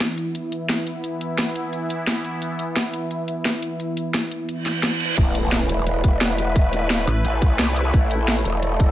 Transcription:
Already playing: analog synth pad E3 B3 E4
0.00 snare, closed hi-hat
0.18 closed hi-hat
0.35 closed hi-hat
0.52 closed hi-hat
0.69 snare, closed hi-hat
0.87 closed hi-hat
1.04 closed hi-hat
1.21 closed hi-hat
1.38 snare, closed hi-hat
1.56 closed hi-hat
1.73 closed hi-hat
1.90 closed hi-hat
2.07 snare, closed hi-hat
2.25 closed hi-hat
2.42 closed hi-hat
2.59 closed hi-hat
2.76 snare, closed hi-hat
2.94 closed hi-hat
3.11 closed hi-hat
3.28 closed hi-hat
3.45 snare, closed hi-hat
3.63 closed hi-hat
3.80 closed hi-hat
3.97 closed hi-hat
4.14 snare, closed hi-hat
4.32 closed hi-hat
4.49 closed hi-hat, reverse cymbal
4.66 snare, closed hi-hat
4.83 snare, closed hi-hat
5.00 closed hi-hat
5.18 wobble bass A1, analog synth pad A3 E4 B4, kick, closed hi-hat, crash, impact
5.35 closed hi-hat
5.52 snare, closed hi-hat
5.69 wobble bass E1, closed hi-hat
5.87 closed hi-hat
6.04 kick, closed hi-hat
6.21 snare, closed hi-hat
6.38 closed hi-hat
6.56 kick, closed hi-hat
6.65 wobble bass D#1
6.73 closed hi-hat
6.90 wobble bass D1, snare, closed hi-hat
7.07 wobble bass A1, closed hi-hat
7.25 wobble bass A1, closed hi-hat
7.42 kick, closed hi-hat
7.59 wobble bass C2, snare, closed hi-hat
7.76 closed hi-hat
7.94 wobble bass A1, analog synth pad A4, kick, closed hi-hat
8.11 closed hi-hat
8.28 snare, closed hi-hat
8.45 wobble bass E1, closed hi-hat
8.63 closed hi-hat
8.80 kick, closed hi-hat

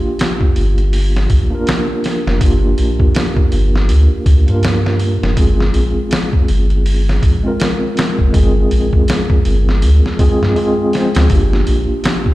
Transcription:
Already playing: tine electric piano A#3 D4 F4 G4
0.19 snare, open hi-hat
0.41 kick
0.56 sub bass G1, open hi-hat
0.78 closed hi-hat
0.93 open hi-hat
1.17 snare
1.30 sub bass A#1, kick, open hi-hat
1.50 tine electric piano A#3 D4 F4
1.55 tine electric piano A#4
1.67 snare, open hi-hat
2.04 snare, open hi-hat
2.26 sub bass F1, snare
2.40 sub bass G1, tine electric piano A#3 D4 F4, kick, open hi-hat
2.44 tine electric piano G4
2.78 sub bass A#1, open hi-hat
3.00 kick
3.15 snare, open hi-hat
3.37 kick
3.52 sub bass G1, open hi-hat
3.76 snare
3.89 sub bass D2, open hi-hat
4.26 sub bass D2, kick, open hi-hat
4.46 sub bass G2, tine electric piano A#3 D4 F4, closed hi-hat
4.51 tine electric piano A#4
4.63 snare, open hi-hat
4.86 snare
5.00 open hi-hat
5.22 sub bass F1, snare
5.36 sub bass G1, tine electric piano G#3 C4 F4, kick, open hi-hat
5.40 tine electric piano G#4
5.60 snare
5.74 sub bass A#1, open hi-hat
6.11 snare, open hi-hat
6.33 kick
6.48 sub bass G1, open hi-hat
6.70 closed hi-hat
6.86 open hi-hat
7.09 snare
7.23 sub bass A#1, kick, open hi-hat
7.43 tine electric piano G#3 C4 F4
7.48 tine electric piano A#4
7.60 snare, open hi-hat
7.97 snare, open hi-hat
8.19 sub bass F1, kick
8.33 sub bass G1, tine electric piano G#3 C4 F4, kick, open hi-hat
8.37 tine electric piano G#4
8.71 sub bass A#1, open hi-hat
8.93 kick
9.08 snare, open hi-hat
9.30 kick
9.45 sub bass G1, open hi-hat
9.69 snare
9.82 sub bass D2, open hi-hat
10.06 snare
10.19 tine electric piano G#3 C4 F4 G#4, kick, open hi-hat
10.41 sub bass G2, snare
10.56 tine electric piano G#3 C4 F4 G#4, open hi-hat
10.93 tine electric piano G#3 F4 C5, snare, open hi-hat
11.15 sub bass D2, snare, open hi-hat
11.29 sub bass G1, tine electric piano A#3 D4 F4, kick, open hi-hat
11.33 tine electric piano G4
11.53 snare
11.67 sub bass A#1, open hi-hat
12.04 snare, open hi-hat
12.26 kick

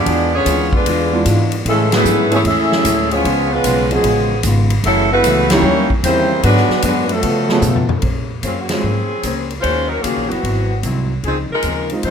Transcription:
Already playing: trombone section G#3 B3 D4, saxophone section B3 F4 G#4 D5
0.06 upright bass E2, hollow-body jazz guitar E3 G#3 D4 F4, kick, ride
0.35 trombone section D3 G#3 C#4, saxophone section B3 F4 G#4 C#5
0.46 upright bass D2, hollow-body jazz guitar E3 G#3 D4 F4, kick, hi-hat pedal, ride
0.73 trombone section D3 G#3 B3, saxophone section G#3 D4 F4 B4, kick
0.86 upright bass E2, hollow-body jazz guitar E3 G#3 D4 F4, kick, ride
1.13 grand piano E3 G#3 B3 D4 F4
1.26 upright bass G#2, hollow-body jazz guitar E3 G#3 D4 F4, kick, hi-hat pedal, ride
1.52 ride
1.65 upright bass A2, hollow-body jazz guitar A2 G#3 C#4 E4, trombone section C#3 E3 A3, saxophone section G#3, kick, ride
1.69 saxophone section E3 C#4 A4
1.92 trombone section E3 B3 G#4, saxophone section A3 E4 G#4 B4, snare, ride
2.05 upright bass G#2, hollow-body jazz guitar A2 G#3 C#4 E4, hi-hat pedal
2.30 trombone section E3 G#3 C#4, grand piano E3 A3 B3 C#4 G#4, ride
2.34 saxophone section A3 E4 G#4 C#5
2.44 upright bass E2, hollow-body jazz guitar A2 G#3 C#4, trombone section A3 C#4 E4, saxophone section C#4 G#4 A4 E5, kick, ride
2.49 hollow-body jazz guitar E4
2.72 snare
2.84 upright bass D2, hollow-body jazz guitar A2 G#3 C#4 E4, kick, hi-hat pedal, ride
3.11 trombone section F3 G#3 C#4, saxophone section B3 F4 G#4 C#5, ride
3.24 upright bass C#2, hollow-body jazz guitar C#3 G#3 B3 F4, kick, ride
3.52 trombone section F3 G#3 B3, saxophone section G#3 C#4 F4 B4
3.64 upright bass B1, hollow-body jazz guitar C#3 G#3 B3 F4, kick, hi-hat pedal, ride
3.91 trombone section B2 F3 G#3, grand piano F3 G#3 B3 C#4 G#4, saxophone section F3 B3 C#4 G#4, ride
4.03 upright bass A1, hollow-body jazz guitar C#3 G#3 B3 F4, kick, ride
4.43 upright bass G#1, hollow-body jazz guitar C#3 G#3 B3, kick, hi-hat pedal, ride
4.47 hollow-body jazz guitar F4
4.70 ride
4.83 upright bass F#1, hollow-body jazz guitar F#2 E3 A3 C#4, trombone section C#3 E3 A3, saxophone section F#3 C#4 E4 A4, kick, ride
5.11 trombone section C#3 E3 B3, saxophone section A3 E4 F#4 B4
5.23 upright bass C#2, hollow-body jazz guitar F#2 E3 A3 C#4, kick, hi-hat pedal, ride
5.50 grand piano E3 A#3 C#4 D#4 G4, trombone section G3 A#3 C#4, saxophone section A#3 E4 G4 C#5, snare, ride
5.62 upright bass D#2, hollow-body jazz guitar D#3 G3 C#4
5.66 hollow-body jazz guitar E4
5.90 kick
6.03 upright bass E2, trombone section C#3 G3 C4, hollow-body jazz guitar D#3 G3 C#4 E4, saxophone section A#3 E4 G4 C5, kick, hi-hat pedal, ride
6.43 upright bass G#2, hollow-body jazz guitar G#2 F#3 B3 D4, trombone section D3 F#3 B3, saxophone section G#3 D4 F#4 B4, kick, ride
6.57 snare
6.69 muted upright bass stroke, snare
6.82 upright bass F#2, hollow-body jazz guitar G#2 F#3 B3 D4, trombone section D3 F#3 B3, saxophone section G#3 D4 F#4 B4, kick, hi-hat pedal, ride
7.09 trombone section B2 F3 A3, saxophone section F3 B3 C#4 A4, ride
7.22 hollow-body jazz guitar C#3 A3 B3 F4, upright bass C#3, kick, ride
7.49 grand piano F3 A3 B3 C#4 G#4, snare
7.62 upright bass B2, hollow-body jazz guitar C#3 A3 B3 F4, floor tom, hi-hat pedal
7.76 floor tom
7.89 floor tom
8.02 upright bass A#2, hollow-body jazz guitar A#3 C#4 G#4 C5, kick, ride
8.43 upright bass F#2, saxophone section G#3 C4 C#4 F4, hollow-body jazz guitar A#3 C#4 G#4 C5, kick, hi-hat pedal, ride
8.61 saxophone section F#4
8.69 saxophone section F3 C4 C#4 G#4, grand piano G#3 C4 C#4 F4, snare, ride
8.84 upright bass G#2, hollow-body jazz guitar A#3 C#4 G#4 C5
9.23 upright bass C#2, hollow-body jazz guitar A#3 C#4 G#4 C5, kick, hi-hat pedal, ride
9.50 ride
9.60 upright bass D#2, saxophone section G#3 C#4 F4 C5, kick, ride
9.66 hollow-body jazz guitar D#3 A#3 C#4 F#4
9.87 saxophone section F#3 C#4 D#4 A#4
10.00 upright bass C#2, saxophone section F3 A#3 C#4 G#4, kick, hi-hat pedal, ride
10.04 hollow-body jazz guitar D#3 A#3 C#4 F#4
10.17 upright bass A#1
10.28 upright bass F#1, saxophone section E3 B3 C4 F#4, grand piano F#3 B3 C4, ride
10.32 grand piano E4
10.43 upright bass G#1, hollow-body jazz guitar G#2 F#3 C4 E4, kick, ride
10.83 upright bass C2, hollow-body jazz guitar G#2 F#3 C4 E4, kick, hi-hat pedal, ride
11.23 upright bass C#2, hollow-body jazz guitar C#3 F3 C4, saxophone section F3 C4 D#4 G#4, kick, ride
11.28 hollow-body jazz guitar D#4
11.51 saxophone section G#3 D#4 F4 A#4, muted upright bass stroke
11.62 upright bass D#2, hollow-body jazz guitar C#3 F3, kick, hi-hat pedal, ride
11.67 hollow-body jazz guitar C4 D#4
11.90 grand piano G#3 C4 D#4 F4, ride
12.03 upright bass F2, hollow-body jazz guitar C#3 F3 C4, saxophone section G#3 D#4 F4 C5, kick, ride
12.07 hollow-body jazz guitar D#4

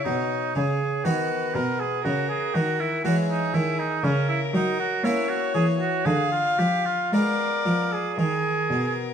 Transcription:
Already playing: violin C#5
0.04 harpsichord B2, cello B2, oboe D#4
0.55 harpsichord C#3, cello C#3, oboe G#4
1.05 cello D#3, harpsichord D#3 B3 D#4 F#4, oboe F#4, violin B4
1.55 cello B2, harpsichord B2, oboe A#4
1.80 oboe G#4
2.04 cello C#3, harpsichord C#3, oboe F#4, violin A#4
2.29 oboe G#4
2.54 cello D#3, harpsichord D#3, oboe F#4
2.80 oboe E4
3.04 cello E3, harpsichord E3 G#3 C#4 E4, oboe F#4, violin G#4
3.29 oboe D#4
3.54 cello D#3, harpsichord D#3, oboe E4
3.79 oboe D#4
4.03 cello C#3, harpsichord C#3, oboe C#4, violin A#4
4.29 oboe E4
4.54 cello F#3, harpsichord F#3, oboe D#4
4.79 oboe F#4
5.04 cello A#3, harpsichord A#3 C#4 E4, oboe E4, violin C#5
5.28 oboe F#4
5.54 cello E3, harpsichord E3, oboe G#4
5.80 oboe F#4
6.06 cello D3, harpsichord D3, oboe G#4, violin F5
6.32 oboe F4
6.59 cello F3, harpsichord F3, oboe G4
6.85 oboe F4
7.12 cello G#3, harpsichord G#3 B3 F4, oboe A#4, violin D5
7.66 cello F3, harpsichord F3
7.92 oboe G#4
8.18 cello D#3, harpsichord D#3, oboe G#4, violin A#4
8.70 cello B2, harpsichord B2

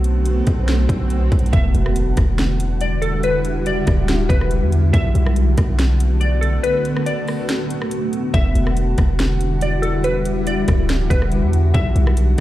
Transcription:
Already playing: 808-style bass B1, ambient pad D3 A3 B3 F#4, swell
0.04 closed hi-hat
0.26 closed hi-hat
0.47 808-style bass B1, kick, closed hi-hat
0.68 snare, closed hi-hat
0.89 808-style bass B1, kick, closed hi-hat
1.10 closed hi-hat
1.32 808-style bass B1, kick, closed hi-hat
1.39 closed hi-hat
1.46 closed hi-hat
1.53 808-style bass E1, ambient pad D3 G3 E4 F#4, synth pluck E5, kick, closed hi-hat, impact
1.74 808-style bass E1, closed hi-hat
1.86 cross-stick
1.96 closed hi-hat
2.17 808-style bass E1, kick, cross-stick, closed hi-hat
2.38 snare, closed hi-hat
2.60 closed hi-hat
2.81 synth pluck D5, closed hi-hat
3.02 synth pluck A4, closed hi-hat
3.23 synth pluck B4, closed hi-hat
3.45 closed hi-hat
3.66 synth pluck D5, closed hi-hat
3.87 808-style bass D1, kick, cross-stick, closed hi-hat
4.08 snare, closed hi-hat
4.29 808-style bass E1, synth pluck B4, kick, closed hi-hat
4.41 cross-stick
4.51 closed hi-hat
4.62 808-style bass E2
4.72 closed hi-hat
4.93 808-style bass B1, ambient pad A3 B3 F#4, synth pluck E5, kick, closed hi-hat
5.15 808-style bass B1, closed hi-hat
5.26 cross-stick
5.36 closed hi-hat
5.57 808-style bass B1, kick, cross-stick, closed hi-hat
5.79 snare, closed hi-hat
6.00 closed hi-hat
6.21 synth pluck D5, closed hi-hat
6.41 synth pluck A4, closed hi-hat
6.63 synth pluck B4, closed hi-hat
6.85 closed hi-hat
6.97 cross-stick
7.06 synth pluck D5, closed hi-hat
7.28 cross-stick, open hi-hat
7.49 snare, closed hi-hat
7.70 closed hi-hat
7.82 cross-stick
7.91 closed hi-hat
8.13 closed hi-hat
8.34 808-style bass E1, ambient pad G3 E4, synth pluck E5, kick, closed hi-hat
8.55 808-style bass E1, closed hi-hat
8.67 cross-stick
8.77 closed hi-hat
8.98 808-style bass E1, kick, cross-stick, closed hi-hat
9.19 snare, closed hi-hat
9.41 closed hi-hat
9.61 synth pluck D5, closed hi-hat
9.82 synth pluck A4, closed hi-hat
10.04 synth pluck B4, closed hi-hat
10.25 closed hi-hat
10.47 synth pluck D5, closed hi-hat
10.68 808-style bass D1, kick, cross-stick, closed hi-hat
10.89 snare, closed hi-hat
11.10 808-style bass E1, synth pluck B4, kick, closed hi-hat
11.22 cross-stick
11.32 closed hi-hat
11.42 808-style bass E2
11.53 closed hi-hat
11.74 808-style bass B1, ambient pad D3 A3 B3, synth pluck E5, kick, closed hi-hat
11.96 808-style bass B1, closed hi-hat
12.07 cross-stick
12.17 closed hi-hat

